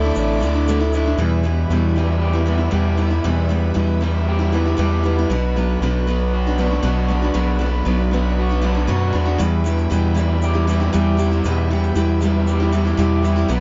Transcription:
Already playing: D2 D3 A3 D4 E4 A4 D5 E5 D6
0.03 A3 D4 E4
0.15 A1 D4, shaker
0.40 D2 D3 A3 D4 E4, shaker
0.54 A3 D4 E4
0.68 D3 A3 D4 E4, shaker
0.80 A3 D4 E4
0.93 D3 A3 D4 E4, shaker
1.06 A3 D4 E4
1.18 E2 B2 E3 G3 B3 E4 G4 B4 E5 B5
1.44 B2 E3 G3 B3 E4
1.70 E2 B2 E3 G3 B3 E4
1.96 E3 G3 B3 E4
2.22 G4
2.33 E3 G3 B3 E4
2.46 E3 G3 B3 E4
2.58 E3 G3 B3 E4
2.71 E2 B2 E3 G3 B3 E4 G4
2.97 E3 G3 B3 E4
3.10 E3 G3 B3 E4
3.24 E2 B2 E3 G3 B3 E4
3.49 B2 E3 G3 B3 E4
3.74 E2 B2 E3 G3 B3 E4
4.01 E3 G3 B3 E4
4.28 G4
4.39 E3 G3 B3 E4
4.52 E3 G3 B3 E4
4.65 E3 G3 B3 E4
4.77 E2 B2 E3 G3 B3 E4 G4
5.03 E3 G3 B3 E4
5.18 E3 G3 B3 E4
5.30 B1 B2 F#3 B3 D4 F#4 D5
5.56 F#3 B3 D4 F#4
5.81 B1 B2 F#3 B3 D4 F#4
6.07 F#3 B3 D4 F#4
6.34 F#4
6.47 B3 D4 F#4
6.58 F#3 B3 D4 F#4
6.70 B3 D4 F#4
6.83 B1 B2 F#3 B3 D4 F#4
7.08 F#3 B3 D4 F#4
7.22 B3 D4 F#4
7.34 B1 B2 F#3 B3 D4 F#4
7.59 F#3 B3 D4 F#4
7.85 B1 B2 F#3 B3 D4 F#4
8.11 F#3 B3 D4 F#4
8.38 F#4
8.49 B3 D4 F#4
8.62 F#3 B3 D4 F#4
8.75 B3 D4 F#4
8.87 F#2 B2 F#3 B3 D4 F#4
9.13 E2 F#3 B3 D4 F#4
9.25 B3 D4 F#4
9.38 E2 B2 E3 G3 E4 G4 E5, shaker
9.64 B2 E3 G3 E4 G4, shaker
9.79 shaker
9.90 E2 B2 E3 G3 E4 G4, shaker
10.14 E3 G3 E4 G4, shaker
10.42 G4, shaker
10.54 E3 G3 E4 G4
10.67 E3 G3 E4 G4, shaker
10.80 E3 G3 E4 G4, shaker
10.93 E2 B2 E3 G3 E4 G4, shaker
11.17 E3 G3 E4 G4, shaker
11.31 E3 G3 E4 G4, shaker
11.44 E2 B2 E3 G3 E4 G4, shaker
11.70 B2 E3 G3 E4 G4
11.83 shaker
11.95 E2 B2 E3 G3 E4 G4, shaker
12.21 E3 G3 E4 G4, shaker
12.47 G4, shaker
12.60 E3 G3 E4 G4
12.72 E3 G3 E4 G4, shaker
12.85 E3 G3 E4 G4, shaker
12.97 E2 B2 E3 G3 E4 G4, shaker
13.23 E3 G3 E4 G4, shaker
13.36 E3 G3 E4 G4, shaker
13.48 B1 B2 F#3 B3 D4 F#4 B4 D5 B5, shaker

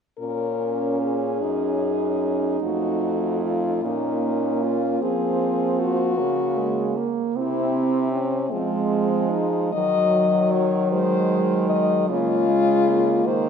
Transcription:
0.18 A#2 C#4 A#4
0.22 C#4
1.02 G#4
1.42 F#2 C#4 D#4
2.61 F2 A3 F#4
3.42 F4
3.82 A#2 A#3 C#4 D#4
4.64 F4
5.01 F3 C4 G#4
5.80 F#4
6.17 C#3 A#3
6.57 G#3
6.96 A#3
7.36 C3 C4 E4
8.12 C#4
8.50 F3 G#3 C4
9.30 D#4
9.72 D#3 F#3 D#5
10.51 C#5
10.91 G#3 C5
11.69 D#5
12.09 C#3 G#3 A#3 F4
12.49 G#3
12.88 A#3
13.26 D#3 C5

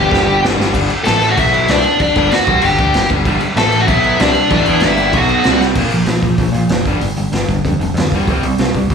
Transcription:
Already playing: G1 G2 D3 G3 G4 G5
0.11 G1 G2 D3 G3, kick, snare
0.26 G1 G2 D3 G3
0.43 G1 G2 D3 G3, snare
0.58 G1 G2 D3 G3, snare
0.73 G1 G2 D3 G3, kick, crash
0.90 muted picked electric bass stroke, muted overdriven electric guitar stroke, crash
1.04 A1 A2 E3 A3 A4 A5, snare, crash
1.22 crash
1.29 F#4 F#5
1.37 B1 B2 F#3 B3 E4 E5, kick, crash
1.54 crash
1.68 C2 C3 G3 C4 D4 D5, snare, crash
1.84 crash
2.00 D4 D5, kick, crash
2.15 G1 G2 D3 G3, kick, crash
2.31 F#4 F#5, muted overdriven electric guitar stroke, snare, crash
2.47 C2 C3 G3 C4, kick, crash
2.61 G1 G4 G5, crash
2.66 G2 D3
2.78 D2 D3 A3 D4, kick, crash
2.94 G1 G2 D3, snare, crash
3.10 G1 G2 D3 G3, kick, crash
3.25 G1 G2 D3 G3, kick, crash
3.40 muted distorted electric guitar stroke, muted overdriven electric guitar stroke, crash
3.56 A1 A2 E3 A3 A4 A5, snare, crash
3.72 crash
3.81 F#4 F#5
3.86 B1 B2 F#3 B3 E4 E5, kick, crash
4.04 crash
4.19 C2 C3 G3 C4 D4 D5, snare, crash
4.35 crash
4.50 A1 A2 E3 A3 D4 D5, kick, crash
4.66 E2 E3 B3 E4, crash
4.80 G1 G2 D3 G3, snare, crash
4.85 E4 E5
4.97 crash
5.13 B1 B2 F#3 B3, kick, crash
5.17 F#4 F#5
5.29 crash
5.44 C2 C3 G3 C4, snare, crash
5.61 snare
5.75 A#1 A#2 F3 A#3, kick, crash
5.91 A#1 A#2 F3, open hi-hat
6.06 A#1 A#2 F3, snare, open hi-hat
6.22 A#1 A#2 F3, kick, open hi-hat
6.38 A#1 A#2 F3, kick, open hi-hat
6.52 A#2 F3, open hi-hat
6.69 F1 A#2 F3, snare, open hi-hat
6.86 G1 G2 D3 G3, kick, open hi-hat
7.01 G1 G2 D3, open hi-hat
7.16 G1 G2 D3, open hi-hat
7.32 G1, snare, open hi-hat
7.36 G2 D3
7.48 G1 G2 D3, kick, open hi-hat
7.65 F2 G2 D3, kick, open hi-hat
7.79 F1 G2 D3, open hi-hat
7.94 F2 G2, snare, open hi-hat
7.99 D3
8.12 G2 D3 G3, kick, open hi-hat
8.27 C2 C3 G3 C4, kick, open hi-hat
8.43 C2 C3 G3, open hi-hat
8.58 C2 C3 G3, snare, open hi-hat
8.75 C2 C3 G3, kick, open hi-hat
8.90 C2 C3 G3, kick, open hi-hat

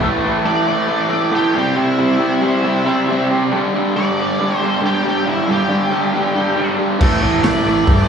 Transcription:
0.01 A2 E3 A3
0.24 A2 E3 A3
0.45 A2 E3 A3 D5
0.66 A2 E3 A3
0.87 A2 E3 A3
1.09 A2 E3 A3
1.32 A2 E3 A3 G4
1.54 C3 G3 C4 G4
1.75 C3 G3 C4 E4
1.98 C3 G3 C4 E4
2.19 C3 G3 C4
2.42 C3 G3 C4
2.64 C3 G3 C4
2.86 C3 G3 C4
3.09 C3 G3 C4
3.30 C3 G3 C4
3.52 G2 D3 G3
3.74 G2 D3 G3
3.96 G2 D3 G3 D5
4.19 G2 D3 G3
4.39 G2 D3 G3
4.57 G2 C5
4.62 D3 G3
4.82 G2 D3 G3 G4
5.04 G2 D3 G3
5.09 G4
5.26 G2 D3 G3 E4
5.47 G2 D3 G3 G4
5.69 G2 D3 G3
5.91 G2 D3 G3
6.13 G2 D3 G3
6.35 G2 D3 G3
6.56 G2 D3 G3
6.77 G2 D3 G3
6.99 A1 A2 E3 A3, kick, crash
7.21 A1 A2 E3 A3
7.43 A1 A2 E3 A3 D5, snare, open hi-hat
7.63 A1 A2 E3 A3
7.86 G2 A2 E3 A3, kick, open hi-hat

